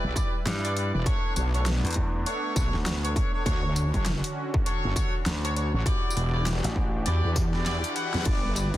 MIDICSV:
0, 0, Header, 1, 7, 480
1, 0, Start_track
1, 0, Tempo, 600000
1, 849, Time_signature, 4, 2, 24, 8
1, 7018, End_track
2, 0, Start_track
2, 0, Title_t, "Horn section"
2, 0, Program_c, 0, 61
2, 0, Note_on_c, 0, 64, 94
2, 0, Note_on_c, 0, 67, 86
2, 0, Note_on_c, 0, 71, 84
2, 0, Note_on_c, 0, 74, 101
2, 109, Note_off_c, 0, 64, 0
2, 109, Note_off_c, 0, 67, 0
2, 109, Note_off_c, 0, 71, 0
2, 110, Note_off_c, 0, 74, 0
2, 127, Note_on_c, 0, 64, 94
2, 127, Note_on_c, 0, 71, 89
2, 127, Note_on_c, 0, 74, 106
2, 128, Note_on_c, 0, 67, 87
2, 283, Note_off_c, 0, 64, 0
2, 283, Note_off_c, 0, 71, 0
2, 283, Note_off_c, 0, 74, 0
2, 284, Note_off_c, 0, 67, 0
2, 513, Note_on_c, 0, 71, 86
2, 513, Note_on_c, 0, 74, 101
2, 514, Note_on_c, 0, 64, 91
2, 514, Note_on_c, 0, 67, 84
2, 585, Note_off_c, 0, 71, 0
2, 585, Note_off_c, 0, 74, 0
2, 586, Note_off_c, 0, 64, 0
2, 586, Note_off_c, 0, 67, 0
2, 609, Note_on_c, 0, 71, 76
2, 610, Note_on_c, 0, 64, 81
2, 610, Note_on_c, 0, 67, 73
2, 610, Note_on_c, 0, 74, 90
2, 732, Note_off_c, 0, 64, 0
2, 732, Note_off_c, 0, 67, 0
2, 732, Note_off_c, 0, 71, 0
2, 732, Note_off_c, 0, 74, 0
2, 754, Note_on_c, 0, 67, 67
2, 754, Note_on_c, 0, 71, 66
2, 754, Note_on_c, 0, 74, 78
2, 756, Note_on_c, 0, 64, 72
2, 834, Note_off_c, 0, 67, 0
2, 835, Note_off_c, 0, 64, 0
2, 835, Note_off_c, 0, 71, 0
2, 835, Note_off_c, 0, 74, 0
2, 850, Note_on_c, 0, 62, 94
2, 850, Note_on_c, 0, 69, 86
2, 850, Note_on_c, 0, 71, 88
2, 851, Note_on_c, 0, 73, 105
2, 1061, Note_off_c, 0, 62, 0
2, 1061, Note_off_c, 0, 69, 0
2, 1061, Note_off_c, 0, 71, 0
2, 1061, Note_off_c, 0, 73, 0
2, 1088, Note_on_c, 0, 73, 84
2, 1090, Note_on_c, 0, 69, 69
2, 1090, Note_on_c, 0, 71, 69
2, 1091, Note_on_c, 0, 62, 77
2, 1199, Note_off_c, 0, 69, 0
2, 1199, Note_off_c, 0, 71, 0
2, 1199, Note_off_c, 0, 73, 0
2, 1200, Note_off_c, 0, 62, 0
2, 1236, Note_on_c, 0, 71, 79
2, 1236, Note_on_c, 0, 73, 94
2, 1237, Note_on_c, 0, 69, 79
2, 1238, Note_on_c, 0, 62, 84
2, 1346, Note_off_c, 0, 69, 0
2, 1346, Note_off_c, 0, 71, 0
2, 1346, Note_off_c, 0, 73, 0
2, 1347, Note_off_c, 0, 62, 0
2, 1810, Note_on_c, 0, 69, 84
2, 1811, Note_on_c, 0, 62, 91
2, 1812, Note_on_c, 0, 71, 84
2, 1812, Note_on_c, 0, 73, 100
2, 2030, Note_off_c, 0, 69, 0
2, 2031, Note_off_c, 0, 62, 0
2, 2031, Note_off_c, 0, 71, 0
2, 2031, Note_off_c, 0, 73, 0
2, 2048, Note_on_c, 0, 69, 88
2, 2048, Note_on_c, 0, 71, 89
2, 2049, Note_on_c, 0, 62, 95
2, 2049, Note_on_c, 0, 73, 109
2, 2204, Note_off_c, 0, 62, 0
2, 2204, Note_off_c, 0, 69, 0
2, 2204, Note_off_c, 0, 71, 0
2, 2204, Note_off_c, 0, 73, 0
2, 2434, Note_on_c, 0, 73, 100
2, 2435, Note_on_c, 0, 62, 93
2, 2435, Note_on_c, 0, 69, 85
2, 2435, Note_on_c, 0, 71, 86
2, 2506, Note_off_c, 0, 62, 0
2, 2506, Note_off_c, 0, 71, 0
2, 2506, Note_off_c, 0, 73, 0
2, 2507, Note_off_c, 0, 69, 0
2, 2526, Note_on_c, 0, 69, 74
2, 2528, Note_on_c, 0, 71, 75
2, 2528, Note_on_c, 0, 73, 92
2, 2529, Note_on_c, 0, 62, 82
2, 2651, Note_off_c, 0, 69, 0
2, 2651, Note_off_c, 0, 71, 0
2, 2651, Note_off_c, 0, 73, 0
2, 2652, Note_off_c, 0, 62, 0
2, 2673, Note_on_c, 0, 69, 65
2, 2673, Note_on_c, 0, 71, 68
2, 2674, Note_on_c, 0, 62, 74
2, 2674, Note_on_c, 0, 73, 81
2, 2754, Note_off_c, 0, 69, 0
2, 2754, Note_off_c, 0, 71, 0
2, 2755, Note_off_c, 0, 62, 0
2, 2755, Note_off_c, 0, 73, 0
2, 2763, Note_on_c, 0, 62, 97
2, 2763, Note_on_c, 0, 73, 104
2, 2764, Note_on_c, 0, 66, 87
2, 2764, Note_on_c, 0, 69, 86
2, 2977, Note_off_c, 0, 62, 0
2, 2977, Note_off_c, 0, 73, 0
2, 2978, Note_off_c, 0, 66, 0
2, 2978, Note_off_c, 0, 69, 0
2, 3008, Note_on_c, 0, 62, 75
2, 3008, Note_on_c, 0, 69, 70
2, 3008, Note_on_c, 0, 73, 83
2, 3009, Note_on_c, 0, 66, 69
2, 3118, Note_off_c, 0, 62, 0
2, 3118, Note_off_c, 0, 69, 0
2, 3118, Note_off_c, 0, 73, 0
2, 3119, Note_off_c, 0, 66, 0
2, 3153, Note_on_c, 0, 62, 87
2, 3153, Note_on_c, 0, 73, 93
2, 3154, Note_on_c, 0, 66, 80
2, 3155, Note_on_c, 0, 69, 77
2, 3264, Note_off_c, 0, 62, 0
2, 3264, Note_off_c, 0, 73, 0
2, 3265, Note_off_c, 0, 66, 0
2, 3265, Note_off_c, 0, 69, 0
2, 3728, Note_on_c, 0, 62, 92
2, 3729, Note_on_c, 0, 69, 84
2, 3729, Note_on_c, 0, 73, 103
2, 3731, Note_on_c, 0, 66, 86
2, 3949, Note_off_c, 0, 62, 0
2, 3950, Note_off_c, 0, 69, 0
2, 3950, Note_off_c, 0, 73, 0
2, 3951, Note_off_c, 0, 66, 0
2, 3968, Note_on_c, 0, 62, 96
2, 3969, Note_on_c, 0, 66, 89
2, 3969, Note_on_c, 0, 69, 87
2, 3969, Note_on_c, 0, 73, 110
2, 4124, Note_off_c, 0, 62, 0
2, 4124, Note_off_c, 0, 66, 0
2, 4124, Note_off_c, 0, 69, 0
2, 4124, Note_off_c, 0, 73, 0
2, 4354, Note_on_c, 0, 66, 85
2, 4356, Note_on_c, 0, 62, 90
2, 4356, Note_on_c, 0, 69, 86
2, 4356, Note_on_c, 0, 73, 103
2, 4426, Note_off_c, 0, 66, 0
2, 4427, Note_off_c, 0, 62, 0
2, 4427, Note_off_c, 0, 69, 0
2, 4427, Note_off_c, 0, 73, 0
2, 4450, Note_on_c, 0, 62, 80
2, 4450, Note_on_c, 0, 66, 74
2, 4451, Note_on_c, 0, 69, 76
2, 4452, Note_on_c, 0, 73, 87
2, 4573, Note_off_c, 0, 62, 0
2, 4573, Note_off_c, 0, 66, 0
2, 4573, Note_off_c, 0, 69, 0
2, 4573, Note_off_c, 0, 73, 0
2, 4596, Note_on_c, 0, 62, 72
2, 4596, Note_on_c, 0, 66, 66
2, 4597, Note_on_c, 0, 73, 81
2, 4598, Note_on_c, 0, 69, 66
2, 4675, Note_off_c, 0, 62, 0
2, 4676, Note_off_c, 0, 66, 0
2, 4676, Note_off_c, 0, 73, 0
2, 4677, Note_off_c, 0, 69, 0
2, 4687, Note_on_c, 0, 64, 97
2, 4687, Note_on_c, 0, 66, 84
2, 4687, Note_on_c, 0, 67, 89
2, 4688, Note_on_c, 0, 74, 106
2, 4899, Note_off_c, 0, 64, 0
2, 4899, Note_off_c, 0, 66, 0
2, 4899, Note_off_c, 0, 67, 0
2, 4900, Note_off_c, 0, 74, 0
2, 4927, Note_on_c, 0, 64, 74
2, 4927, Note_on_c, 0, 66, 68
2, 4927, Note_on_c, 0, 74, 82
2, 4928, Note_on_c, 0, 67, 69
2, 5038, Note_off_c, 0, 64, 0
2, 5038, Note_off_c, 0, 66, 0
2, 5038, Note_off_c, 0, 67, 0
2, 5038, Note_off_c, 0, 74, 0
2, 5071, Note_on_c, 0, 64, 86
2, 5071, Note_on_c, 0, 74, 96
2, 5072, Note_on_c, 0, 67, 79
2, 5073, Note_on_c, 0, 66, 78
2, 5183, Note_off_c, 0, 64, 0
2, 5183, Note_off_c, 0, 74, 0
2, 5184, Note_off_c, 0, 66, 0
2, 5184, Note_off_c, 0, 67, 0
2, 5648, Note_on_c, 0, 66, 83
2, 5649, Note_on_c, 0, 67, 87
2, 5649, Note_on_c, 0, 74, 104
2, 5650, Note_on_c, 0, 64, 93
2, 5869, Note_off_c, 0, 66, 0
2, 5870, Note_off_c, 0, 67, 0
2, 5870, Note_off_c, 0, 74, 0
2, 5871, Note_off_c, 0, 64, 0
2, 6034, Note_on_c, 0, 66, 69
2, 6036, Note_on_c, 0, 64, 78
2, 6036, Note_on_c, 0, 67, 70
2, 6036, Note_on_c, 0, 74, 85
2, 6115, Note_off_c, 0, 64, 0
2, 6115, Note_off_c, 0, 66, 0
2, 6115, Note_off_c, 0, 67, 0
2, 6116, Note_off_c, 0, 74, 0
2, 6128, Note_on_c, 0, 74, 110
2, 6129, Note_on_c, 0, 64, 97
2, 6129, Note_on_c, 0, 66, 87
2, 6129, Note_on_c, 0, 67, 91
2, 6346, Note_off_c, 0, 64, 0
2, 6346, Note_off_c, 0, 66, 0
2, 6346, Note_off_c, 0, 67, 0
2, 6346, Note_off_c, 0, 74, 0
2, 6369, Note_on_c, 0, 66, 84
2, 6370, Note_on_c, 0, 64, 96
2, 6370, Note_on_c, 0, 67, 83
2, 6370, Note_on_c, 0, 78, 99
2, 6586, Note_off_c, 0, 64, 0
2, 6586, Note_off_c, 0, 66, 0
2, 6586, Note_off_c, 0, 78, 0
2, 6587, Note_off_c, 0, 67, 0
2, 6606, Note_on_c, 0, 64, 93
2, 6607, Note_on_c, 0, 67, 85
2, 6607, Note_on_c, 0, 74, 105
2, 6608, Note_on_c, 0, 71, 85
2, 6819, Note_off_c, 0, 64, 0
2, 6819, Note_off_c, 0, 67, 0
2, 6819, Note_off_c, 0, 74, 0
2, 6820, Note_off_c, 0, 71, 0
2, 6847, Note_on_c, 0, 71, 69
2, 6848, Note_on_c, 0, 67, 70
2, 6849, Note_on_c, 0, 74, 85
2, 6850, Note_on_c, 0, 64, 75
2, 6958, Note_off_c, 0, 67, 0
2, 6958, Note_off_c, 0, 71, 0
2, 6959, Note_off_c, 0, 74, 0
2, 6960, Note_off_c, 0, 64, 0
2, 6993, Note_on_c, 0, 71, 78
2, 7018, Note_off_c, 0, 71, 0
2, 7018, End_track
3, 0, Start_track
3, 0, Title_t, "Analog synth pad"
3, 0, Program_c, 1, 89
3, 0, Note_on_c, 1, 55, 78
3, 0, Note_on_c, 1, 64, 72
3, 0, Note_on_c, 1, 71, 88
3, 830, Note_off_c, 1, 64, 0
3, 831, Note_off_c, 1, 55, 0
3, 832, Note_off_c, 1, 71, 0
3, 852, Note_on_c, 1, 57, 78
3, 853, Note_on_c, 1, 62, 86
3, 855, Note_on_c, 1, 59, 75
3, 2751, Note_off_c, 1, 57, 0
3, 2752, Note_off_c, 1, 62, 0
3, 2753, Note_off_c, 1, 59, 0
3, 2770, Note_on_c, 1, 61, 72
3, 2773, Note_on_c, 1, 66, 89
3, 2775, Note_on_c, 1, 50, 78
3, 4670, Note_off_c, 1, 61, 0
3, 4672, Note_off_c, 1, 50, 0
3, 4693, Note_on_c, 1, 67, 90
3, 4694, Note_on_c, 1, 52, 80
3, 4694, Note_on_c, 1, 62, 73
3, 6579, Note_off_c, 1, 66, 0
3, 6592, Note_off_c, 1, 52, 0
3, 6592, Note_off_c, 1, 62, 0
3, 6592, Note_off_c, 1, 67, 0
3, 6613, Note_on_c, 1, 55, 81
3, 6613, Note_on_c, 1, 64, 74
3, 6615, Note_on_c, 1, 71, 88
3, 7018, Note_off_c, 1, 55, 0
3, 7018, Note_off_c, 1, 64, 0
3, 7018, Note_off_c, 1, 71, 0
3, 7018, End_track
4, 0, Start_track
4, 0, Title_t, "Slap bass"
4, 0, Program_c, 2, 36
4, 366, Note_on_c, 2, 43, 97
4, 729, Note_off_c, 2, 43, 0
4, 1470, Note_on_c, 2, 40, 94
4, 1792, Note_off_c, 2, 40, 0
4, 2192, Note_on_c, 2, 38, 97
4, 2512, Note_off_c, 2, 38, 0
4, 4208, Note_on_c, 2, 38, 98
4, 4570, Note_off_c, 2, 38, 0
4, 5313, Note_on_c, 2, 33, 95
4, 5633, Note_off_c, 2, 33, 0
4, 7018, End_track
5, 0, Start_track
5, 0, Title_t, "Wobble bass"
5, 0, Program_c, 3, 39
5, 32, Note_on_c, 3, 35, 99
5, 112, Note_off_c, 3, 35, 0
5, 757, Note_on_c, 3, 28, 97
5, 835, Note_off_c, 3, 28, 0
5, 1091, Note_on_c, 3, 35, 104
5, 1452, Note_off_c, 3, 35, 0
5, 2050, Note_on_c, 3, 35, 97
5, 2171, Note_off_c, 3, 35, 0
5, 2769, Note_on_c, 3, 38, 98
5, 3131, Note_off_c, 3, 38, 0
5, 3154, Note_on_c, 3, 30, 97
5, 3371, Note_off_c, 3, 30, 0
5, 3877, Note_on_c, 3, 30, 97
5, 3955, Note_off_c, 3, 30, 0
5, 4590, Note_on_c, 3, 33, 99
5, 4672, Note_off_c, 3, 33, 0
5, 4929, Note_on_c, 3, 28, 101
5, 5291, Note_off_c, 3, 28, 0
5, 5652, Note_on_c, 3, 40, 98
5, 5772, Note_off_c, 3, 40, 0
5, 5795, Note_on_c, 3, 40, 98
5, 6251, Note_off_c, 3, 40, 0
5, 6516, Note_on_c, 3, 40, 98
5, 6594, Note_off_c, 3, 40, 0
5, 6609, Note_on_c, 3, 31, 102
5, 6970, Note_off_c, 3, 31, 0
5, 6991, Note_on_c, 3, 35, 95
5, 7018, Note_off_c, 3, 35, 0
5, 7018, End_track
6, 0, Start_track
6, 0, Title_t, "Reverse cymbal"
6, 0, Program_c, 4, 119
6, 5649, Note_on_c, 4, 60, 61
6, 6609, Note_off_c, 4, 60, 0
6, 7018, End_track
7, 0, Start_track
7, 0, Title_t, "Drums"
7, 127, Note_on_c, 9, 36, 105
7, 131, Note_on_c, 9, 42, 64
7, 131, Note_on_c, 9, 54, 64
7, 207, Note_off_c, 9, 36, 0
7, 211, Note_off_c, 9, 42, 0
7, 211, Note_off_c, 9, 54, 0
7, 375, Note_on_c, 9, 38, 118
7, 375, Note_on_c, 9, 42, 78
7, 455, Note_off_c, 9, 38, 0
7, 455, Note_off_c, 9, 42, 0
7, 518, Note_on_c, 9, 42, 57
7, 598, Note_off_c, 9, 42, 0
7, 612, Note_on_c, 9, 42, 63
7, 692, Note_off_c, 9, 42, 0
7, 848, Note_on_c, 9, 36, 115
7, 851, Note_on_c, 9, 42, 76
7, 928, Note_off_c, 9, 36, 0
7, 931, Note_off_c, 9, 42, 0
7, 1090, Note_on_c, 9, 37, 37
7, 1090, Note_on_c, 9, 42, 63
7, 1090, Note_on_c, 9, 54, 64
7, 1170, Note_off_c, 9, 37, 0
7, 1170, Note_off_c, 9, 42, 0
7, 1170, Note_off_c, 9, 54, 0
7, 1235, Note_on_c, 9, 42, 36
7, 1315, Note_off_c, 9, 42, 0
7, 1330, Note_on_c, 9, 38, 113
7, 1330, Note_on_c, 9, 42, 74
7, 1410, Note_off_c, 9, 38, 0
7, 1410, Note_off_c, 9, 42, 0
7, 1477, Note_on_c, 9, 42, 30
7, 1493, Note_off_c, 9, 42, 0
7, 1493, Note_on_c, 9, 42, 40
7, 1524, Note_off_c, 9, 42, 0
7, 1524, Note_on_c, 9, 42, 45
7, 1541, Note_off_c, 9, 42, 0
7, 1541, Note_on_c, 9, 42, 49
7, 1554, Note_off_c, 9, 42, 0
7, 1554, Note_on_c, 9, 42, 58
7, 1568, Note_on_c, 9, 36, 57
7, 1634, Note_off_c, 9, 42, 0
7, 1648, Note_off_c, 9, 36, 0
7, 1811, Note_on_c, 9, 42, 76
7, 1891, Note_off_c, 9, 42, 0
7, 2048, Note_on_c, 9, 36, 102
7, 2048, Note_on_c, 9, 42, 64
7, 2048, Note_on_c, 9, 54, 69
7, 2128, Note_off_c, 9, 36, 0
7, 2128, Note_off_c, 9, 42, 0
7, 2128, Note_off_c, 9, 54, 0
7, 2196, Note_on_c, 9, 37, 39
7, 2196, Note_on_c, 9, 38, 36
7, 2276, Note_off_c, 9, 37, 0
7, 2276, Note_off_c, 9, 38, 0
7, 2290, Note_on_c, 9, 38, 117
7, 2290, Note_on_c, 9, 42, 75
7, 2370, Note_off_c, 9, 38, 0
7, 2370, Note_off_c, 9, 42, 0
7, 2437, Note_on_c, 9, 42, 59
7, 2517, Note_off_c, 9, 42, 0
7, 2528, Note_on_c, 9, 36, 107
7, 2532, Note_on_c, 9, 42, 63
7, 2608, Note_off_c, 9, 36, 0
7, 2612, Note_off_c, 9, 42, 0
7, 2767, Note_on_c, 9, 36, 112
7, 2769, Note_on_c, 9, 42, 77
7, 2847, Note_off_c, 9, 36, 0
7, 2849, Note_off_c, 9, 42, 0
7, 3008, Note_on_c, 9, 37, 38
7, 3008, Note_on_c, 9, 42, 65
7, 3008, Note_on_c, 9, 54, 66
7, 3088, Note_off_c, 9, 37, 0
7, 3088, Note_off_c, 9, 42, 0
7, 3088, Note_off_c, 9, 54, 0
7, 3152, Note_on_c, 9, 36, 60
7, 3152, Note_on_c, 9, 42, 36
7, 3232, Note_off_c, 9, 36, 0
7, 3232, Note_off_c, 9, 42, 0
7, 3247, Note_on_c, 9, 38, 109
7, 3247, Note_on_c, 9, 42, 76
7, 3327, Note_off_c, 9, 38, 0
7, 3327, Note_off_c, 9, 42, 0
7, 3392, Note_on_c, 9, 42, 68
7, 3472, Note_off_c, 9, 42, 0
7, 3632, Note_on_c, 9, 36, 102
7, 3712, Note_off_c, 9, 36, 0
7, 3730, Note_on_c, 9, 42, 80
7, 3810, Note_off_c, 9, 42, 0
7, 3967, Note_on_c, 9, 36, 101
7, 3970, Note_on_c, 9, 42, 68
7, 3970, Note_on_c, 9, 54, 68
7, 4047, Note_off_c, 9, 36, 0
7, 4050, Note_off_c, 9, 42, 0
7, 4050, Note_off_c, 9, 54, 0
7, 4210, Note_on_c, 9, 38, 114
7, 4210, Note_on_c, 9, 42, 75
7, 4290, Note_off_c, 9, 38, 0
7, 4290, Note_off_c, 9, 42, 0
7, 4358, Note_on_c, 9, 42, 58
7, 4438, Note_off_c, 9, 42, 0
7, 4452, Note_on_c, 9, 42, 63
7, 4532, Note_off_c, 9, 42, 0
7, 4687, Note_on_c, 9, 36, 115
7, 4692, Note_on_c, 9, 42, 81
7, 4767, Note_off_c, 9, 36, 0
7, 4772, Note_off_c, 9, 42, 0
7, 4884, Note_on_c, 9, 54, 67
7, 4934, Note_on_c, 9, 37, 38
7, 4934, Note_on_c, 9, 42, 67
7, 4964, Note_off_c, 9, 54, 0
7, 5014, Note_off_c, 9, 37, 0
7, 5014, Note_off_c, 9, 42, 0
7, 5172, Note_on_c, 9, 38, 114
7, 5172, Note_on_c, 9, 42, 79
7, 5252, Note_off_c, 9, 38, 0
7, 5252, Note_off_c, 9, 42, 0
7, 5315, Note_on_c, 9, 38, 37
7, 5315, Note_on_c, 9, 42, 69
7, 5395, Note_off_c, 9, 38, 0
7, 5395, Note_off_c, 9, 42, 0
7, 5407, Note_on_c, 9, 36, 60
7, 5487, Note_off_c, 9, 36, 0
7, 5647, Note_on_c, 9, 42, 82
7, 5727, Note_off_c, 9, 42, 0
7, 5887, Note_on_c, 9, 36, 101
7, 5887, Note_on_c, 9, 42, 68
7, 5887, Note_on_c, 9, 54, 65
7, 5967, Note_off_c, 9, 36, 0
7, 5967, Note_off_c, 9, 42, 0
7, 5967, Note_off_c, 9, 54, 0
7, 6034, Note_on_c, 9, 37, 41
7, 6034, Note_on_c, 9, 38, 36
7, 6114, Note_off_c, 9, 37, 0
7, 6114, Note_off_c, 9, 38, 0
7, 6128, Note_on_c, 9, 38, 62
7, 6128, Note_on_c, 9, 42, 81
7, 6208, Note_off_c, 9, 38, 0
7, 6208, Note_off_c, 9, 42, 0
7, 6272, Note_on_c, 9, 42, 62
7, 6352, Note_off_c, 9, 42, 0
7, 6366, Note_on_c, 9, 42, 67
7, 6446, Note_off_c, 9, 42, 0
7, 6512, Note_on_c, 9, 38, 77
7, 6526, Note_off_c, 9, 38, 0
7, 6526, Note_on_c, 9, 38, 65
7, 6575, Note_off_c, 9, 38, 0
7, 6575, Note_on_c, 9, 38, 52
7, 6605, Note_on_c, 9, 42, 82
7, 6605, Note_on_c, 9, 49, 78
7, 6607, Note_on_c, 9, 36, 121
7, 6655, Note_off_c, 9, 38, 0
7, 6685, Note_off_c, 9, 42, 0
7, 6685, Note_off_c, 9, 49, 0
7, 6687, Note_off_c, 9, 36, 0
7, 6848, Note_on_c, 9, 37, 37
7, 6848, Note_on_c, 9, 42, 70
7, 6848, Note_on_c, 9, 54, 64
7, 6928, Note_off_c, 9, 37, 0
7, 6928, Note_off_c, 9, 42, 0
7, 6928, Note_off_c, 9, 54, 0
7, 6992, Note_on_c, 9, 36, 63
7, 6992, Note_on_c, 9, 42, 39
7, 7018, Note_off_c, 9, 36, 0
7, 7018, Note_off_c, 9, 42, 0
7, 7018, End_track
0, 0, End_of_file